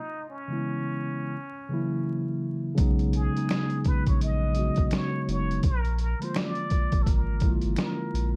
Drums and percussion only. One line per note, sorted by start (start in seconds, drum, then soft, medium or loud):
2.78 kick loud
2.78 closed hi-hat medium
2.99 closed hi-hat soft
3.13 closed hi-hat medium
3.37 closed hi-hat soft
3.49 finger snap medium
3.49 snare loud
3.49 closed hi-hat medium
3.70 closed hi-hat soft
3.85 kick medium
3.85 closed hi-hat medium
4.07 kick medium
4.07 closed hi-hat medium
4.21 closed hi-hat medium
4.55 closed hi-hat medium
4.76 kick medium
4.76 closed hi-hat soft
4.91 finger snap medium
4.91 snare loud
4.91 closed hi-hat medium
5.29 closed hi-hat medium
5.51 closed hi-hat soft
5.63 kick loud
5.63 closed hi-hat medium
5.85 closed hi-hat soft
5.99 closed hi-hat medium
6.22 closed hi-hat medium
6.34 finger snap medium
6.34 snare loud
6.34 closed hi-hat medium
6.55 closed hi-hat soft
6.70 kick medium
6.70 closed hi-hat medium
6.92 kick medium
6.92 closed hi-hat medium
7.06 kick loud
7.06 closed hi-hat medium
7.40 kick medium
7.40 closed hi-hat medium
7.62 closed hi-hat soft
7.76 finger snap medium
7.76 snare loud
7.76 closed hi-hat medium
8.15 closed hi-hat medium